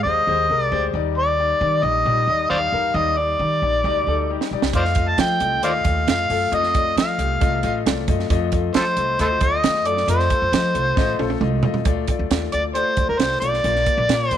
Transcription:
0.03 D#2 G#3 G4 C5 D#5
0.27 D#2 G#3 G4 C5
0.50 C2 G#3 G4 A#4
0.61 D5
0.72 D2 G#3 G4 C5
0.94 D#2 G3 D#4 D5
1.18 D5
1.39 G3 D#4 D5
1.61 D#3 G3 D#4 D5
1.83 A#1 G3 D#4 D5 D#5
2.05 A#2 G3 D#4 D5
2.27 D#2 G3 D#4 D5
2.50 D#2 G3 D#4 C5 D5 F5
2.72 E2 G3 D#4 A#4
2.94 D#2 G3 D#4 D5 D#5
3.18 D#4 D5
3.39 D#3 G3 D#4 D5
3.62 A#1 G3 D#4 D5
3.84 D2 G3 D#4 D5
4.07 D2 G3 D#4 A4
4.29 G3 D#4 G4
4.41 snare
4.51 A#1 G3 D#4 D5
4.62 C2, snare
4.73 F2 A3 F4 C5 D5 D#5 F5, kick, closed hi-hat
4.85 snare
4.95 A3 F4 D#5, kick, closed hi-hat
5.08 A5
5.18 F3 A3 F4 D#5 G5, snare, closed hi-hat
5.40 C2 A3 F4 D#5, closed hi-hat
5.63 D#2 A3 F4 C5 D5 D#5 F5, closed hi-hat
5.85 D#2 A3 F4 D#5, kick, closed hi-hat
6.07 F2 A3 F4 D#5 F5, snare, closed hi-hat
6.30 F#2 A3 F4 A4, open hi-hat
6.52 F2 A3 F4 D#5, closed hi-hat
6.63 snare
6.75 A3 F4 D5, kick, closed hi-hat
6.96 F3 A3 F4 D#5 F5, snare, closed hi-hat
7.18 C2 A3 F4 G4, closed hi-hat
7.40 C2 A3 F4 D#5, kick, closed hi-hat
7.63 A1 A3 F4 D#5, closed hi-hat
7.86 C2 A3 F4 D5, snare, closed hi-hat
8.08 F#2 A3 F4 D#5, kick, closed hi-hat
8.19 snare
8.30 F2 A3 F4 D#5, kick, closed hi-hat
8.52 A3 F4 D#5, kick, closed hi-hat
8.74 F3 A3 F4 A4 C5 D#5, snare, closed hi-hat
8.97 C2 A3 F4 D#5, closed hi-hat
9.19 D2 A3 F4 A4 C5 D#5, closed hi-hat
9.41 D2 A3 F4 D#5, kick, closed hi-hat
9.64 D#2 A3 F4 D#5, snare, closed hi-hat
9.75 snare
9.85 F#2 A3 F4 A4 D5, closed hi-hat
9.97 snare
10.07 F2 A3 F4 C5 D#5, closed hi-hat
10.20 snare
10.30 A3 A4, kick, closed hi-hat
10.42 F2
10.52 F3 A3 F4 D#5, snare, closed hi-hat
10.74 C2 A3 F4 C5, closed hi-hat
10.96 A1 A3 F4 D#5, kick, snare
11.19 A#1 A3 F4 A4, high tom
11.30 high tom
11.41 C2 A3 F4 D#5, mid tom
11.63 D#2 A3 F4 D#5, floor tom
11.74 floor tom
11.85 D2 A3 F4 D5, kick, closed hi-hat
12.07 A3 F4 D5, kick, closed hi-hat
12.19 D2
12.30 D#2 A3 F4 D5, snare, closed hi-hat
12.52 D2 A3 F4 D5, closed hi-hat
12.75 A3 F4 C5 D5, closed hi-hat
12.97 D2 A3 F4 D5, kick, closed hi-hat
13.09 D2 A#4
13.19 C2 A3 F4 C5 D5, snare, closed hi-hat
13.32 snare
13.40 B1 A3 F4 D5, closed hi-hat
13.54 snare
13.64 A#1 A#3 F4 D5, closed hi-hat
13.76 snare
13.86 A#3 F4 D5, kick, closed hi-hat
13.97 A#1
14.08 A#2 A#3 F4 D5, snare, closed hi-hat
14.28 F2 A#3 F4 C5, closed hi-hat
14.32 D5

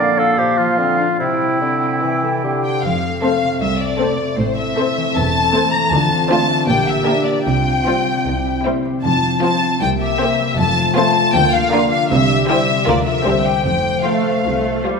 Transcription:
Already playing: A#2 D3 F3 F4
0.00 A#3 D5 F5
0.19 F4 A4
0.38 A#2 F3 G4
0.58 F3 F4
0.78 D3 A#3 C4 F5
0.99 D4 F4
1.19 C3 E4 G5
1.42 G3
1.61 D3 C4
1.83 C5
2.03 C3 E3
2.24 G3 A4
2.44 D3 C4 G4
2.65 C5 G5
2.84 F1 F2 C4 A4 F5
3.05 C4
3.23 A3 C4 A4 C5 F5
3.44 C3
3.61 C2 A3 E5
3.81 C4 D5
4.00 A3 C4 A4 C5
4.20 C3
4.38 A1 A2 C5
4.58 C4 E5
4.78 A3 C4 A4 C5
4.97 E3
5.16 E1 E2 A3 A5
5.36 C4
5.54 A3 C4 A4 C5
5.73 E3 A#5
5.93 D2 D3 C4 F4 A5
6.11 F4
6.30 A3 D4 F4 C5 A5
6.49 D4
6.68 A#1 A#2 A#3 G4 G5
6.88 G4 E5
7.07 A#3 D4 G4 A#4
7.27 A#3 D5
7.46 C2 C3 C4 F4 G5
7.68 F4
7.87 G3 C4 F4 C5
8.07 G3
8.26 C2 C3 E4
8.46 E4
8.65 G3 C4 E4 C5
8.85 G3
9.04 F1 F2 F3 F4 A5
9.23 C5
9.42 F3 C4 F4 C5 A5
9.63 C4
9.81 C2 C3 A#3 G4 G5
10.00 G4 E5
10.21 A#3 C4 G4 C5
10.40 G3
10.58 F1 F2 F3 A3 F4 A5
10.77 C5
10.96 A3 C4 F4 C5 A5
11.16 A3
11.35 D2 D3 A#3 G5
11.53 F4 F5
11.73 A#3 D4 F4 A#4
11.91 D4 F5
12.10 C2 C3 G3 G4 E5
12.30 G4
12.49 G3 E4 G4 C5 E5
12.69 C4
12.87 D2 D3 F3 A#3 F4 A#4 D5
13.06 F4 A#4 E5
13.26 C2 C3 G3 C4 G4 C5
13.46 G4 C5 G5
13.65 F1 F2 F3 A3 G5
13.86 C5
14.06 A3 F4 C5 F5
14.26 A3
14.46 C2 A3 F4
14.66 C5
14.85 G3 F4 C5

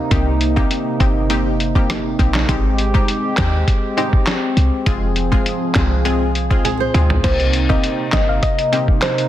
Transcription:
Already playing: C3 A#3 D#4
0.11 C2 A#3 C4 D#4 G4, kick, closed hi-hat
0.41 closed hi-hat
0.56 A#3 C4 D#4 G4, kick
0.71 closed hi-hat
1.00 G1 A#3 C4 D#4 G4, kick, closed hi-hat
1.30 A#3 C4 D#4 G4, closed hi-hat
1.60 closed hi-hat
1.75 A#3 C4 D#4 G4, kick
1.90 cross-stick, snare, closed hi-hat
2.19 A#1 A#3 C4 D#4 G4, kick, closed hi-hat
2.34 snare, clap
2.48 G#1 G#3 C4 D#4 G4, kick, closed hi-hat
2.78 closed hi-hat
2.94 G#3 C4 D#4 G4, kick
3.08 closed hi-hat
3.37 D#2 G#3 C4 D#4 G4, kick, snare, clap, closed hi-hat
3.68 kick, closed hi-hat
3.97 G#3 C4 D#4 G4, closed hi-hat
4.13 kick
4.27 cross-stick, snare, clap, closed hi-hat
4.57 C2, closed hi-hat
4.86 F1 F3 G#3 C4 F4 G#4, kick, closed hi-hat
5.16 closed hi-hat
5.32 G#3 C4 F4 G#4, kick
5.46 closed hi-hat
5.75 C2 G#3 C4 F4 G#4, kick, snare, clap, closed hi-hat
6.05 G#3 C4 F4 G#4, closed hi-hat
6.35 closed hi-hat
6.50 G#3 C4 F4 G#4, kick
6.65 G#4, closed hi-hat, high tom
6.80 C5
6.94 D2 G#3 C4 F4 G#4, closed hi-hat, mid tom
7.10 floor tom
7.24 C2 C3 A#3 C4 D#4 G4 C5, kick, closed hi-hat, crash
7.40 closed hi-hat
7.53 closed hi-hat
7.69 A#3 C4 D#4 G4 D#5, kick
7.84 closed hi-hat
8.12 G1 A#3 C4 D#4 G4 D#5, kick, snare, clap, closed hi-hat
8.29 F5
8.43 D#5, kick, closed hi-hat
8.59 closed hi-hat
8.72 A#3 C4 D#4 G4, closed hi-hat
8.88 kick
9.02 C5, cross-stick, snare, clap, closed hi-hat
9.18 closed hi-hat

